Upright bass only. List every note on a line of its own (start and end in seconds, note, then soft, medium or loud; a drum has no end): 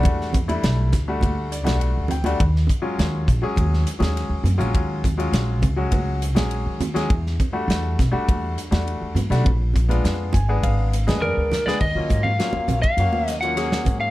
0.05 0.57 E2 medium
0.63 0.93 B1 medium
0.93 1.19 D2 medium
1.23 1.67 D2 medium
1.67 1.92 B1 medium
1.97 2.35 D2 medium
2.40 2.65 D#2 medium
2.98 3.24 D#2 medium
3.28 3.41 A#1 medium
3.42 muted upright bass stroke soft
3.57 3.83 D#2 medium
4.00 4.27 D#2 medium
4.29 4.42 D#2 medium
4.44 4.57 F#2 medium
4.60 4.73 A#1 medium
4.74 5.26 D#2 medium
5.32 5.63 A#1 medium
5.63 5.88 C#2 medium
5.92 6.36 C#2 medium
6.36 6.62 A#1 medium
6.66 7.04 D#3 medium
7.10 7.36 E2 loud
7.68 7.94 E2 medium
7.99 8.12 B1 medium
8.13 muted upright bass stroke soft
8.29 8.54 E2 medium
8.72 8.98 E2 medium
9.01 9.14 E2 medium
9.15 9.28 G2 medium
9.30 9.43 B1 medium
9.47 9.98 A#1 medium
10.04 10.36 F2 medium
10.34 10.60 G#1 medium
10.63 11.09 G#1 medium
11.07 11.33 F2 medium
11.37 11.75 D2 medium
11.81 11.97 D#2 medium
11.95 12.08 D#3 medium
12.10 12.36 G#2 medium
12.54 muted upright bass stroke soft
12.68 12.82 A#1 medium
12.84 muted upright bass stroke soft
12.97 13.12 F#2 medium
13.12 13.77 D#2 medium
13.87 14.11 G#2 medium